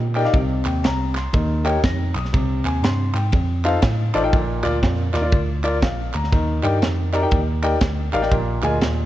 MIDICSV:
0, 0, Header, 1, 4, 480
1, 0, Start_track
1, 0, Key_signature, -3, "major"
1, 0, Tempo, 498753
1, 325, Time_signature, 4, 2, 24, 8
1, 8717, End_track
2, 0, Start_track
2, 0, Title_t, "Grand piano"
2, 0, Program_c, 0, 0
2, 151, Note_on_c, 0, 63, 88
2, 151, Note_on_c, 0, 67, 81
2, 152, Note_on_c, 0, 70, 76
2, 153, Note_on_c, 0, 79, 97
2, 156, Note_on_c, 0, 74, 81
2, 212, Note_off_c, 0, 63, 0
2, 212, Note_off_c, 0, 67, 0
2, 212, Note_off_c, 0, 70, 0
2, 213, Note_off_c, 0, 79, 0
2, 214, Note_off_c, 0, 74, 0
2, 236, Note_on_c, 0, 70, 70
2, 237, Note_on_c, 0, 63, 82
2, 237, Note_on_c, 0, 67, 72
2, 237, Note_on_c, 0, 74, 75
2, 242, Note_on_c, 0, 77, 87
2, 322, Note_on_c, 0, 48, 72
2, 325, Note_off_c, 0, 63, 0
2, 325, Note_off_c, 0, 67, 0
2, 325, Note_off_c, 0, 70, 0
2, 325, Note_off_c, 0, 74, 0
2, 328, Note_off_c, 0, 77, 0
2, 630, Note_on_c, 0, 79, 62
2, 797, Note_off_c, 0, 79, 0
2, 806, Note_on_c, 0, 82, 76
2, 1072, Note_off_c, 0, 48, 0
2, 1097, Note_off_c, 0, 82, 0
2, 1111, Note_on_c, 0, 84, 66
2, 1283, Note_on_c, 0, 51, 76
2, 1568, Note_off_c, 0, 84, 0
2, 1581, Note_on_c, 0, 67, 78
2, 1583, Note_on_c, 0, 63, 82
2, 1583, Note_on_c, 0, 70, 76
2, 1583, Note_on_c, 0, 79, 94
2, 1585, Note_on_c, 0, 73, 72
2, 1709, Note_off_c, 0, 67, 0
2, 1710, Note_off_c, 0, 63, 0
2, 1710, Note_off_c, 0, 70, 0
2, 1710, Note_off_c, 0, 79, 0
2, 1711, Note_off_c, 0, 73, 0
2, 1767, Note_on_c, 0, 94, 68
2, 2033, Note_off_c, 0, 51, 0
2, 2058, Note_off_c, 0, 94, 0
2, 2072, Note_on_c, 0, 87, 71
2, 2238, Note_on_c, 0, 48, 78
2, 2529, Note_off_c, 0, 87, 0
2, 2553, Note_on_c, 0, 80, 64
2, 2720, Note_off_c, 0, 80, 0
2, 2727, Note_on_c, 0, 84, 80
2, 2990, Note_off_c, 0, 48, 0
2, 3018, Note_off_c, 0, 84, 0
2, 3022, Note_on_c, 0, 79, 67
2, 3484, Note_off_c, 0, 79, 0
2, 3506, Note_on_c, 0, 63, 86
2, 3510, Note_on_c, 0, 69, 79
2, 3511, Note_on_c, 0, 65, 77
2, 3511, Note_on_c, 0, 72, 76
2, 3514, Note_on_c, 0, 77, 97
2, 3632, Note_off_c, 0, 63, 0
2, 3634, Note_off_c, 0, 69, 0
2, 3635, Note_off_c, 0, 65, 0
2, 3635, Note_off_c, 0, 72, 0
2, 3636, Note_off_c, 0, 77, 0
2, 3986, Note_on_c, 0, 63, 85
2, 3986, Note_on_c, 0, 65, 82
2, 3989, Note_on_c, 0, 69, 82
2, 3990, Note_on_c, 0, 74, 98
2, 3992, Note_on_c, 0, 72, 80
2, 4051, Note_off_c, 0, 63, 0
2, 4051, Note_off_c, 0, 65, 0
2, 4052, Note_off_c, 0, 69, 0
2, 4053, Note_off_c, 0, 74, 0
2, 4054, Note_off_c, 0, 72, 0
2, 4072, Note_on_c, 0, 65, 71
2, 4073, Note_on_c, 0, 63, 78
2, 4076, Note_on_c, 0, 69, 73
2, 4076, Note_on_c, 0, 72, 72
2, 4076, Note_on_c, 0, 79, 91
2, 4158, Note_on_c, 0, 46, 79
2, 4164, Note_off_c, 0, 65, 0
2, 4165, Note_off_c, 0, 63, 0
2, 4166, Note_off_c, 0, 69, 0
2, 4166, Note_off_c, 0, 72, 0
2, 4166, Note_off_c, 0, 79, 0
2, 4456, Note_on_c, 0, 65, 86
2, 4458, Note_on_c, 0, 70, 73
2, 4458, Note_on_c, 0, 74, 94
2, 4587, Note_off_c, 0, 65, 0
2, 4588, Note_off_c, 0, 70, 0
2, 4588, Note_off_c, 0, 74, 0
2, 4909, Note_off_c, 0, 46, 0
2, 4941, Note_on_c, 0, 74, 90
2, 4942, Note_on_c, 0, 65, 81
2, 4944, Note_on_c, 0, 70, 77
2, 5008, Note_off_c, 0, 74, 0
2, 5009, Note_off_c, 0, 65, 0
2, 5010, Note_off_c, 0, 70, 0
2, 5026, Note_on_c, 0, 70, 72
2, 5027, Note_on_c, 0, 65, 83
2, 5027, Note_on_c, 0, 74, 89
2, 5181, Note_off_c, 0, 65, 0
2, 5181, Note_off_c, 0, 70, 0
2, 5182, Note_off_c, 0, 74, 0
2, 5424, Note_on_c, 0, 65, 81
2, 5424, Note_on_c, 0, 70, 75
2, 5427, Note_on_c, 0, 74, 92
2, 5550, Note_off_c, 0, 65, 0
2, 5550, Note_off_c, 0, 70, 0
2, 5552, Note_off_c, 0, 74, 0
2, 5610, Note_on_c, 0, 77, 65
2, 5898, Note_off_c, 0, 77, 0
2, 5910, Note_on_c, 0, 82, 72
2, 6081, Note_on_c, 0, 51, 80
2, 6366, Note_off_c, 0, 82, 0
2, 6378, Note_on_c, 0, 70, 74
2, 6379, Note_on_c, 0, 63, 80
2, 6380, Note_on_c, 0, 67, 74
2, 6381, Note_on_c, 0, 74, 74
2, 6386, Note_on_c, 0, 79, 92
2, 6506, Note_off_c, 0, 70, 0
2, 6507, Note_off_c, 0, 63, 0
2, 6507, Note_off_c, 0, 67, 0
2, 6508, Note_off_c, 0, 74, 0
2, 6510, Note_off_c, 0, 79, 0
2, 6829, Note_off_c, 0, 51, 0
2, 6858, Note_on_c, 0, 63, 86
2, 6860, Note_on_c, 0, 67, 78
2, 6860, Note_on_c, 0, 70, 76
2, 6862, Note_on_c, 0, 82, 99
2, 6864, Note_on_c, 0, 74, 79
2, 6925, Note_off_c, 0, 63, 0
2, 6926, Note_off_c, 0, 67, 0
2, 6926, Note_off_c, 0, 70, 0
2, 6927, Note_off_c, 0, 82, 0
2, 6928, Note_off_c, 0, 74, 0
2, 6946, Note_on_c, 0, 63, 79
2, 6949, Note_on_c, 0, 70, 73
2, 6951, Note_on_c, 0, 67, 74
2, 6952, Note_on_c, 0, 74, 70
2, 6953, Note_on_c, 0, 79, 91
2, 7099, Note_off_c, 0, 63, 0
2, 7101, Note_off_c, 0, 70, 0
2, 7102, Note_off_c, 0, 67, 0
2, 7103, Note_off_c, 0, 74, 0
2, 7103, Note_off_c, 0, 79, 0
2, 7339, Note_on_c, 0, 70, 78
2, 7341, Note_on_c, 0, 63, 79
2, 7343, Note_on_c, 0, 74, 75
2, 7344, Note_on_c, 0, 79, 92
2, 7345, Note_on_c, 0, 67, 71
2, 7466, Note_off_c, 0, 70, 0
2, 7467, Note_off_c, 0, 63, 0
2, 7468, Note_off_c, 0, 74, 0
2, 7469, Note_off_c, 0, 67, 0
2, 7469, Note_off_c, 0, 79, 0
2, 7821, Note_on_c, 0, 67, 81
2, 7822, Note_on_c, 0, 70, 83
2, 7825, Note_on_c, 0, 63, 89
2, 7827, Note_on_c, 0, 77, 101
2, 7830, Note_on_c, 0, 74, 84
2, 7885, Note_off_c, 0, 67, 0
2, 7886, Note_off_c, 0, 70, 0
2, 7887, Note_off_c, 0, 63, 0
2, 7889, Note_off_c, 0, 77, 0
2, 7890, Note_off_c, 0, 74, 0
2, 7905, Note_on_c, 0, 67, 73
2, 7909, Note_on_c, 0, 74, 76
2, 7910, Note_on_c, 0, 63, 81
2, 7910, Note_on_c, 0, 70, 76
2, 7912, Note_on_c, 0, 79, 84
2, 7998, Note_off_c, 0, 67, 0
2, 7999, Note_on_c, 0, 46, 80
2, 8000, Note_off_c, 0, 63, 0
2, 8000, Note_off_c, 0, 70, 0
2, 8000, Note_off_c, 0, 74, 0
2, 8001, Note_off_c, 0, 79, 0
2, 8303, Note_on_c, 0, 68, 78
2, 8304, Note_on_c, 0, 65, 86
2, 8307, Note_on_c, 0, 70, 73
2, 8310, Note_on_c, 0, 75, 73
2, 8312, Note_on_c, 0, 80, 91
2, 8427, Note_off_c, 0, 68, 0
2, 8428, Note_off_c, 0, 65, 0
2, 8429, Note_off_c, 0, 70, 0
2, 8431, Note_off_c, 0, 75, 0
2, 8432, Note_off_c, 0, 80, 0
2, 8717, Note_off_c, 0, 46, 0
2, 8717, End_track
3, 0, Start_track
3, 0, Title_t, "Tine electric piano"
3, 0, Program_c, 1, 4
3, 0, Note_on_c, 1, 46, 97
3, 250, Note_off_c, 1, 46, 0
3, 326, Note_on_c, 1, 36, 107
3, 586, Note_off_c, 1, 36, 0
3, 634, Note_on_c, 1, 39, 91
3, 782, Note_off_c, 1, 39, 0
3, 805, Note_on_c, 1, 36, 91
3, 1215, Note_off_c, 1, 36, 0
3, 1286, Note_on_c, 1, 39, 120
3, 1695, Note_off_c, 1, 39, 0
3, 1765, Note_on_c, 1, 41, 96
3, 2026, Note_off_c, 1, 41, 0
3, 2063, Note_on_c, 1, 35, 94
3, 2216, Note_off_c, 1, 35, 0
3, 2249, Note_on_c, 1, 36, 99
3, 2508, Note_off_c, 1, 36, 0
3, 2548, Note_on_c, 1, 39, 83
3, 2699, Note_off_c, 1, 39, 0
3, 2717, Note_on_c, 1, 43, 88
3, 2982, Note_off_c, 1, 43, 0
3, 3024, Note_on_c, 1, 44, 88
3, 3177, Note_off_c, 1, 44, 0
3, 3202, Note_on_c, 1, 41, 105
3, 3613, Note_off_c, 1, 41, 0
3, 3684, Note_on_c, 1, 45, 93
3, 3946, Note_off_c, 1, 45, 0
3, 3993, Note_on_c, 1, 33, 90
3, 4142, Note_off_c, 1, 33, 0
3, 4166, Note_on_c, 1, 34, 102
3, 4426, Note_off_c, 1, 34, 0
3, 4471, Note_on_c, 1, 38, 85
3, 4621, Note_off_c, 1, 38, 0
3, 4645, Note_on_c, 1, 41, 94
3, 4905, Note_off_c, 1, 41, 0
3, 4951, Note_on_c, 1, 39, 93
3, 5100, Note_off_c, 1, 39, 0
3, 5124, Note_on_c, 1, 38, 95
3, 5602, Note_on_c, 1, 34, 88
3, 5605, Note_off_c, 1, 38, 0
3, 5863, Note_off_c, 1, 34, 0
3, 5910, Note_on_c, 1, 38, 93
3, 6059, Note_off_c, 1, 38, 0
3, 6086, Note_on_c, 1, 39, 95
3, 6345, Note_off_c, 1, 39, 0
3, 6386, Note_on_c, 1, 43, 91
3, 6537, Note_off_c, 1, 43, 0
3, 6558, Note_on_c, 1, 41, 88
3, 6969, Note_off_c, 1, 41, 0
3, 7042, Note_on_c, 1, 39, 104
3, 7450, Note_off_c, 1, 39, 0
3, 7518, Note_on_c, 1, 38, 95
3, 7779, Note_off_c, 1, 38, 0
3, 7828, Note_on_c, 1, 33, 86
3, 7976, Note_off_c, 1, 33, 0
3, 8002, Note_on_c, 1, 34, 102
3, 8261, Note_off_c, 1, 34, 0
3, 8303, Note_on_c, 1, 38, 102
3, 8453, Note_off_c, 1, 38, 0
3, 8479, Note_on_c, 1, 39, 89
3, 8717, Note_off_c, 1, 39, 0
3, 8717, End_track
4, 0, Start_track
4, 0, Title_t, "Drums"
4, 150, Note_on_c, 9, 39, 90
4, 151, Note_on_c, 9, 51, 50
4, 244, Note_on_c, 9, 38, 34
4, 246, Note_off_c, 9, 39, 0
4, 248, Note_off_c, 9, 51, 0
4, 327, Note_on_c, 9, 36, 105
4, 327, Note_on_c, 9, 51, 79
4, 340, Note_off_c, 9, 38, 0
4, 423, Note_off_c, 9, 36, 0
4, 423, Note_off_c, 9, 51, 0
4, 628, Note_on_c, 9, 39, 99
4, 638, Note_on_c, 9, 51, 55
4, 724, Note_off_c, 9, 39, 0
4, 734, Note_off_c, 9, 51, 0
4, 809, Note_on_c, 9, 51, 84
4, 816, Note_on_c, 9, 38, 105
4, 905, Note_off_c, 9, 51, 0
4, 913, Note_off_c, 9, 38, 0
4, 1108, Note_on_c, 9, 39, 87
4, 1119, Note_on_c, 9, 38, 36
4, 1122, Note_on_c, 9, 51, 63
4, 1204, Note_off_c, 9, 39, 0
4, 1215, Note_off_c, 9, 38, 0
4, 1218, Note_off_c, 9, 51, 0
4, 1283, Note_on_c, 9, 51, 71
4, 1288, Note_on_c, 9, 36, 112
4, 1380, Note_off_c, 9, 51, 0
4, 1384, Note_off_c, 9, 36, 0
4, 1595, Note_on_c, 9, 39, 87
4, 1596, Note_on_c, 9, 51, 59
4, 1692, Note_off_c, 9, 39, 0
4, 1693, Note_off_c, 9, 51, 0
4, 1766, Note_on_c, 9, 51, 89
4, 1767, Note_on_c, 9, 36, 104
4, 1770, Note_on_c, 9, 38, 118
4, 1862, Note_off_c, 9, 51, 0
4, 1863, Note_off_c, 9, 36, 0
4, 1866, Note_off_c, 9, 38, 0
4, 2070, Note_on_c, 9, 39, 90
4, 2075, Note_on_c, 9, 51, 51
4, 2166, Note_off_c, 9, 39, 0
4, 2166, Note_on_c, 9, 38, 33
4, 2172, Note_off_c, 9, 51, 0
4, 2248, Note_on_c, 9, 51, 80
4, 2250, Note_on_c, 9, 36, 110
4, 2262, Note_off_c, 9, 38, 0
4, 2344, Note_off_c, 9, 51, 0
4, 2346, Note_off_c, 9, 36, 0
4, 2551, Note_on_c, 9, 39, 103
4, 2560, Note_on_c, 9, 51, 56
4, 2647, Note_off_c, 9, 39, 0
4, 2656, Note_off_c, 9, 51, 0
4, 2731, Note_on_c, 9, 51, 79
4, 2738, Note_on_c, 9, 38, 104
4, 2827, Note_off_c, 9, 51, 0
4, 2834, Note_off_c, 9, 38, 0
4, 3027, Note_on_c, 9, 39, 89
4, 3040, Note_on_c, 9, 51, 68
4, 3124, Note_off_c, 9, 39, 0
4, 3136, Note_off_c, 9, 51, 0
4, 3197, Note_on_c, 9, 51, 74
4, 3205, Note_on_c, 9, 36, 113
4, 3293, Note_off_c, 9, 51, 0
4, 3302, Note_off_c, 9, 36, 0
4, 3509, Note_on_c, 9, 51, 56
4, 3513, Note_on_c, 9, 39, 91
4, 3605, Note_off_c, 9, 51, 0
4, 3609, Note_off_c, 9, 39, 0
4, 3677, Note_on_c, 9, 51, 86
4, 3681, Note_on_c, 9, 38, 114
4, 3683, Note_on_c, 9, 36, 98
4, 3773, Note_off_c, 9, 51, 0
4, 3777, Note_off_c, 9, 38, 0
4, 3779, Note_off_c, 9, 36, 0
4, 3988, Note_on_c, 9, 51, 50
4, 3990, Note_on_c, 9, 39, 101
4, 4085, Note_off_c, 9, 51, 0
4, 4086, Note_off_c, 9, 39, 0
4, 4165, Note_on_c, 9, 51, 80
4, 4166, Note_on_c, 9, 36, 105
4, 4262, Note_off_c, 9, 51, 0
4, 4263, Note_off_c, 9, 36, 0
4, 4463, Note_on_c, 9, 39, 103
4, 4479, Note_on_c, 9, 51, 56
4, 4559, Note_off_c, 9, 39, 0
4, 4576, Note_off_c, 9, 51, 0
4, 4646, Note_on_c, 9, 51, 82
4, 4647, Note_on_c, 9, 36, 88
4, 4653, Note_on_c, 9, 38, 101
4, 4742, Note_off_c, 9, 51, 0
4, 4743, Note_off_c, 9, 36, 0
4, 4749, Note_off_c, 9, 38, 0
4, 4946, Note_on_c, 9, 39, 82
4, 4955, Note_on_c, 9, 38, 34
4, 4958, Note_on_c, 9, 51, 66
4, 5043, Note_off_c, 9, 39, 0
4, 5051, Note_off_c, 9, 38, 0
4, 5054, Note_off_c, 9, 51, 0
4, 5119, Note_on_c, 9, 51, 71
4, 5125, Note_on_c, 9, 36, 109
4, 5216, Note_off_c, 9, 51, 0
4, 5221, Note_off_c, 9, 36, 0
4, 5428, Note_on_c, 9, 39, 86
4, 5432, Note_on_c, 9, 51, 61
4, 5524, Note_off_c, 9, 39, 0
4, 5528, Note_off_c, 9, 51, 0
4, 5601, Note_on_c, 9, 51, 82
4, 5603, Note_on_c, 9, 36, 103
4, 5605, Note_on_c, 9, 38, 113
4, 5697, Note_off_c, 9, 51, 0
4, 5699, Note_off_c, 9, 36, 0
4, 5701, Note_off_c, 9, 38, 0
4, 5905, Note_on_c, 9, 39, 90
4, 5911, Note_on_c, 9, 51, 48
4, 6002, Note_off_c, 9, 39, 0
4, 6003, Note_on_c, 9, 38, 33
4, 6008, Note_off_c, 9, 51, 0
4, 6085, Note_on_c, 9, 36, 103
4, 6086, Note_on_c, 9, 51, 80
4, 6099, Note_off_c, 9, 38, 0
4, 6182, Note_off_c, 9, 36, 0
4, 6182, Note_off_c, 9, 51, 0
4, 6383, Note_on_c, 9, 39, 99
4, 6393, Note_on_c, 9, 51, 54
4, 6479, Note_off_c, 9, 39, 0
4, 6489, Note_off_c, 9, 51, 0
4, 6563, Note_on_c, 9, 51, 78
4, 6570, Note_on_c, 9, 38, 106
4, 6659, Note_off_c, 9, 51, 0
4, 6667, Note_off_c, 9, 38, 0
4, 6867, Note_on_c, 9, 39, 86
4, 6875, Note_on_c, 9, 51, 64
4, 6963, Note_off_c, 9, 39, 0
4, 6972, Note_off_c, 9, 51, 0
4, 7035, Note_on_c, 9, 51, 74
4, 7042, Note_on_c, 9, 36, 108
4, 7132, Note_off_c, 9, 51, 0
4, 7138, Note_off_c, 9, 36, 0
4, 7346, Note_on_c, 9, 39, 91
4, 7347, Note_on_c, 9, 51, 55
4, 7442, Note_off_c, 9, 39, 0
4, 7443, Note_off_c, 9, 51, 0
4, 7514, Note_on_c, 9, 51, 84
4, 7518, Note_on_c, 9, 38, 116
4, 7519, Note_on_c, 9, 36, 104
4, 7610, Note_off_c, 9, 51, 0
4, 7614, Note_off_c, 9, 38, 0
4, 7615, Note_off_c, 9, 36, 0
4, 7825, Note_on_c, 9, 39, 94
4, 7829, Note_on_c, 9, 51, 48
4, 7917, Note_on_c, 9, 38, 34
4, 7921, Note_off_c, 9, 39, 0
4, 7925, Note_off_c, 9, 51, 0
4, 8003, Note_on_c, 9, 36, 104
4, 8004, Note_on_c, 9, 51, 78
4, 8014, Note_off_c, 9, 38, 0
4, 8099, Note_off_c, 9, 36, 0
4, 8100, Note_off_c, 9, 51, 0
4, 8303, Note_on_c, 9, 39, 102
4, 8316, Note_on_c, 9, 51, 52
4, 8400, Note_off_c, 9, 39, 0
4, 8413, Note_off_c, 9, 51, 0
4, 8483, Note_on_c, 9, 51, 80
4, 8490, Note_on_c, 9, 38, 100
4, 8579, Note_off_c, 9, 51, 0
4, 8586, Note_off_c, 9, 38, 0
4, 8717, End_track
0, 0, End_of_file